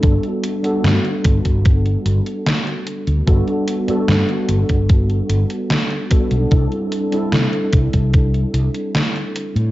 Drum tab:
HH |xxxxxxxxxxxxxxxx|xxxxxxxxxxxxxxxx|xxxxxxxxxxxxxxxx|
SD |----o-------o---|----o-------o---|----o-------o---|
BD |o-----ooo-------|o------oo-----o-|o-----ooo-------|